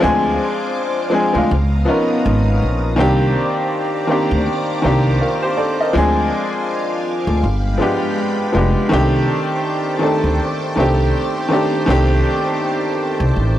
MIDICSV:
0, 0, Header, 1, 4, 480
1, 0, Start_track
1, 0, Tempo, 740741
1, 10, Time_signature, 4, 2, 24, 8
1, 8804, End_track
2, 0, Start_track
2, 0, Title_t, "String machine"
2, 0, Program_c, 0, 50
2, 0, Note_on_c, 0, 80, 79
2, 7, Note_on_c, 0, 72, 83
2, 10, Note_on_c, 0, 86, 92
2, 11, Note_on_c, 0, 77, 69
2, 944, Note_off_c, 0, 80, 0
2, 959, Note_off_c, 0, 72, 0
2, 961, Note_off_c, 0, 86, 0
2, 965, Note_on_c, 0, 82, 73
2, 966, Note_on_c, 0, 87, 89
2, 968, Note_on_c, 0, 59, 75
2, 1911, Note_off_c, 0, 77, 0
2, 1918, Note_off_c, 0, 82, 0
2, 1918, Note_off_c, 0, 87, 0
2, 1919, Note_off_c, 0, 59, 0
2, 1924, Note_on_c, 0, 74, 83
2, 1925, Note_on_c, 0, 82, 83
2, 1925, Note_on_c, 0, 86, 99
2, 1926, Note_on_c, 0, 72, 88
2, 3828, Note_off_c, 0, 74, 0
2, 3828, Note_off_c, 0, 82, 0
2, 3847, Note_on_c, 0, 77, 76
2, 3849, Note_on_c, 0, 80, 78
2, 4782, Note_off_c, 0, 72, 0
2, 4782, Note_off_c, 0, 86, 0
2, 4800, Note_off_c, 0, 80, 0
2, 4810, Note_on_c, 0, 79, 72
2, 4811, Note_on_c, 0, 56, 89
2, 4812, Note_on_c, 0, 83, 92
2, 5749, Note_off_c, 0, 77, 0
2, 5758, Note_off_c, 0, 79, 0
2, 5761, Note_off_c, 0, 56, 0
2, 5761, Note_off_c, 0, 83, 0
2, 5764, Note_on_c, 0, 72, 83
2, 5765, Note_on_c, 0, 79, 71
2, 5767, Note_on_c, 0, 81, 73
2, 5767, Note_on_c, 0, 86, 84
2, 8804, Note_off_c, 0, 72, 0
2, 8804, Note_off_c, 0, 79, 0
2, 8804, Note_off_c, 0, 81, 0
2, 8804, Note_off_c, 0, 86, 0
2, 8804, End_track
3, 0, Start_track
3, 0, Title_t, "Upright piano"
3, 0, Program_c, 1, 0
3, 0, Control_c, 1, 64, 127
3, 0, Note_on_c, 1, 53, 107
3, 3, Note_on_c, 1, 56, 95
3, 8, Note_on_c, 1, 60, 97
3, 14, Note_on_c, 1, 62, 84
3, 19, Control_c, 1, 64, 0
3, 22, Note_on_c, 1, 68, 117
3, 134, Control_c, 1, 64, 127
3, 642, Note_off_c, 1, 53, 0
3, 645, Note_off_c, 1, 56, 0
3, 648, Note_off_c, 1, 60, 0
3, 651, Note_off_c, 1, 62, 0
3, 655, Note_off_c, 1, 68, 0
3, 712, Note_on_c, 1, 53, 75
3, 718, Note_on_c, 1, 56, 82
3, 726, Note_on_c, 1, 60, 78
3, 732, Note_on_c, 1, 62, 67
3, 738, Note_on_c, 1, 68, 97
3, 838, Note_off_c, 1, 53, 0
3, 841, Note_off_c, 1, 56, 0
3, 845, Note_off_c, 1, 60, 0
3, 848, Note_off_c, 1, 62, 0
3, 851, Note_off_c, 1, 68, 0
3, 862, Note_on_c, 1, 53, 80
3, 869, Note_on_c, 1, 56, 79
3, 876, Note_on_c, 1, 60, 75
3, 883, Note_on_c, 1, 62, 66
3, 890, Note_on_c, 1, 65, 81
3, 969, Note_off_c, 1, 53, 0
3, 972, Note_off_c, 1, 56, 0
3, 976, Note_off_c, 1, 60, 0
3, 979, Note_off_c, 1, 62, 0
3, 979, Control_c, 1, 64, 0
3, 983, Note_off_c, 1, 65, 0
3, 1081, Control_c, 1, 64, 127
3, 1200, Note_on_c, 1, 53, 84
3, 1206, Note_on_c, 1, 59, 75
3, 1213, Note_on_c, 1, 61, 77
3, 1220, Note_on_c, 1, 63, 75
3, 1227, Note_on_c, 1, 70, 90
3, 1844, Note_off_c, 1, 53, 0
3, 1847, Note_off_c, 1, 59, 0
3, 1851, Note_off_c, 1, 61, 0
3, 1854, Note_off_c, 1, 63, 0
3, 1857, Note_off_c, 1, 70, 0
3, 1919, Note_on_c, 1, 51, 100
3, 1927, Note_on_c, 1, 58, 93
3, 1933, Note_on_c, 1, 60, 96
3, 1939, Control_c, 1, 64, 0
3, 1939, Note_on_c, 1, 62, 88
3, 1946, Note_on_c, 1, 67, 112
3, 2033, Control_c, 1, 64, 127
3, 2563, Note_off_c, 1, 51, 0
3, 2567, Note_off_c, 1, 58, 0
3, 2570, Note_off_c, 1, 60, 0
3, 2574, Note_off_c, 1, 62, 0
3, 2577, Note_off_c, 1, 67, 0
3, 2638, Note_on_c, 1, 51, 80
3, 2644, Note_on_c, 1, 58, 70
3, 2652, Note_on_c, 1, 60, 73
3, 2656, Note_on_c, 1, 62, 69
3, 2666, Note_on_c, 1, 67, 86
3, 3070, Note_off_c, 1, 51, 0
3, 3073, Note_off_c, 1, 58, 0
3, 3077, Note_off_c, 1, 60, 0
3, 3079, Note_off_c, 1, 62, 0
3, 3084, Note_off_c, 1, 67, 0
3, 3123, Note_on_c, 1, 51, 84
3, 3130, Note_on_c, 1, 58, 79
3, 3137, Note_on_c, 1, 60, 69
3, 3144, Note_on_c, 1, 62, 70
3, 3150, Note_on_c, 1, 67, 95
3, 3373, Note_on_c, 1, 70, 64
3, 3376, Note_on_c, 1, 65, 54
3, 3380, Note_off_c, 1, 67, 0
3, 3499, Note_off_c, 1, 70, 0
3, 3501, Note_off_c, 1, 65, 0
3, 3514, Note_on_c, 1, 72, 73
3, 3519, Note_on_c, 1, 67, 54
3, 3553, Note_off_c, 1, 51, 0
3, 3556, Note_off_c, 1, 58, 0
3, 3560, Note_off_c, 1, 60, 0
3, 3563, Note_off_c, 1, 62, 0
3, 3610, Note_off_c, 1, 72, 0
3, 3611, Note_on_c, 1, 74, 77
3, 3612, Note_off_c, 1, 67, 0
3, 3615, Note_on_c, 1, 69, 65
3, 3738, Note_off_c, 1, 74, 0
3, 3741, Note_off_c, 1, 69, 0
3, 3761, Note_on_c, 1, 75, 75
3, 3766, Note_on_c, 1, 70, 49
3, 3844, Note_on_c, 1, 53, 106
3, 3850, Note_on_c, 1, 56, 103
3, 3857, Note_on_c, 1, 60, 90
3, 3858, Control_c, 1, 64, 0
3, 3863, Note_on_c, 1, 62, 94
3, 3870, Note_on_c, 1, 68, 123
3, 3951, Control_c, 1, 64, 127
3, 3981, Note_off_c, 1, 75, 0
3, 3984, Note_off_c, 1, 70, 0
3, 4698, Note_off_c, 1, 53, 0
3, 4701, Note_off_c, 1, 56, 0
3, 4705, Note_off_c, 1, 60, 0
3, 4708, Note_off_c, 1, 62, 0
3, 4711, Note_off_c, 1, 68, 0
3, 4820, Control_c, 1, 64, 0
3, 4944, Control_c, 1, 64, 127
3, 5040, Note_on_c, 1, 53, 77
3, 5048, Note_on_c, 1, 56, 71
3, 5055, Note_on_c, 1, 59, 75
3, 5060, Note_on_c, 1, 62, 84
3, 5067, Note_on_c, 1, 67, 89
3, 5471, Note_off_c, 1, 53, 0
3, 5475, Note_off_c, 1, 56, 0
3, 5478, Note_off_c, 1, 59, 0
3, 5481, Note_off_c, 1, 62, 0
3, 5484, Note_off_c, 1, 67, 0
3, 5524, Note_on_c, 1, 53, 78
3, 5531, Note_on_c, 1, 56, 81
3, 5538, Note_on_c, 1, 59, 77
3, 5545, Note_on_c, 1, 62, 74
3, 5552, Note_on_c, 1, 67, 81
3, 5740, Note_off_c, 1, 53, 0
3, 5744, Note_off_c, 1, 56, 0
3, 5747, Note_off_c, 1, 59, 0
3, 5750, Note_off_c, 1, 62, 0
3, 5754, Note_off_c, 1, 67, 0
3, 5761, Note_on_c, 1, 51, 107
3, 5769, Note_on_c, 1, 57, 85
3, 5776, Note_on_c, 1, 60, 100
3, 5778, Control_c, 1, 64, 0
3, 5783, Note_on_c, 1, 62, 98
3, 5789, Note_on_c, 1, 67, 120
3, 5887, Control_c, 1, 64, 127
3, 6405, Note_off_c, 1, 51, 0
3, 6409, Note_off_c, 1, 57, 0
3, 6412, Note_off_c, 1, 60, 0
3, 6415, Note_off_c, 1, 62, 0
3, 6419, Note_off_c, 1, 67, 0
3, 6473, Note_on_c, 1, 51, 82
3, 6482, Note_on_c, 1, 57, 71
3, 6487, Note_on_c, 1, 60, 64
3, 6494, Note_on_c, 1, 62, 74
3, 6500, Note_on_c, 1, 69, 83
3, 6908, Note_off_c, 1, 51, 0
3, 6912, Note_off_c, 1, 57, 0
3, 6914, Note_off_c, 1, 60, 0
3, 6918, Note_off_c, 1, 62, 0
3, 6921, Note_off_c, 1, 69, 0
3, 6970, Note_on_c, 1, 51, 75
3, 6978, Note_on_c, 1, 57, 83
3, 6985, Note_on_c, 1, 60, 86
3, 6991, Note_on_c, 1, 62, 81
3, 6997, Note_on_c, 1, 67, 90
3, 7396, Note_off_c, 1, 51, 0
3, 7400, Note_off_c, 1, 57, 0
3, 7404, Note_off_c, 1, 60, 0
3, 7407, Note_off_c, 1, 62, 0
3, 7410, Note_off_c, 1, 67, 0
3, 7442, Note_on_c, 1, 51, 88
3, 7450, Note_on_c, 1, 57, 72
3, 7455, Note_on_c, 1, 60, 81
3, 7463, Note_on_c, 1, 62, 89
3, 7470, Note_on_c, 1, 67, 87
3, 7659, Note_off_c, 1, 51, 0
3, 7663, Note_off_c, 1, 57, 0
3, 7665, Note_off_c, 1, 60, 0
3, 7669, Note_off_c, 1, 62, 0
3, 7673, Note_off_c, 1, 67, 0
3, 7686, Note_on_c, 1, 51, 106
3, 7694, Note_on_c, 1, 57, 100
3, 7699, Note_on_c, 1, 60, 99
3, 7705, Note_on_c, 1, 62, 94
3, 7713, Note_on_c, 1, 67, 122
3, 8539, Note_off_c, 1, 51, 0
3, 8543, Note_off_c, 1, 57, 0
3, 8546, Note_off_c, 1, 60, 0
3, 8549, Note_off_c, 1, 62, 0
3, 8553, Note_off_c, 1, 67, 0
3, 8804, End_track
4, 0, Start_track
4, 0, Title_t, "Upright bass"
4, 0, Program_c, 2, 32
4, 20, Note_on_c, 2, 38, 93
4, 236, Note_off_c, 2, 38, 0
4, 873, Note_on_c, 2, 38, 94
4, 966, Note_off_c, 2, 38, 0
4, 980, Note_on_c, 2, 37, 102
4, 1196, Note_off_c, 2, 37, 0
4, 1461, Note_on_c, 2, 32, 107
4, 1677, Note_off_c, 2, 32, 0
4, 1700, Note_on_c, 2, 34, 83
4, 1939, Note_off_c, 2, 34, 0
4, 1939, Note_on_c, 2, 36, 100
4, 2155, Note_off_c, 2, 36, 0
4, 2793, Note_on_c, 2, 38, 94
4, 2886, Note_off_c, 2, 38, 0
4, 3139, Note_on_c, 2, 36, 83
4, 3355, Note_off_c, 2, 36, 0
4, 3856, Note_on_c, 2, 38, 95
4, 4074, Note_off_c, 2, 38, 0
4, 4712, Note_on_c, 2, 38, 99
4, 4806, Note_off_c, 2, 38, 0
4, 4817, Note_on_c, 2, 31, 91
4, 5035, Note_off_c, 2, 31, 0
4, 5538, Note_on_c, 2, 29, 92
4, 5658, Note_off_c, 2, 29, 0
4, 5780, Note_on_c, 2, 36, 86
4, 5996, Note_off_c, 2, 36, 0
4, 6633, Note_on_c, 2, 38, 88
4, 6726, Note_off_c, 2, 38, 0
4, 6979, Note_on_c, 2, 36, 81
4, 7195, Note_off_c, 2, 36, 0
4, 7697, Note_on_c, 2, 36, 90
4, 7914, Note_off_c, 2, 36, 0
4, 8554, Note_on_c, 2, 36, 98
4, 8646, Note_off_c, 2, 36, 0
4, 8659, Note_on_c, 2, 33, 87
4, 8804, Note_off_c, 2, 33, 0
4, 8804, End_track
0, 0, End_of_file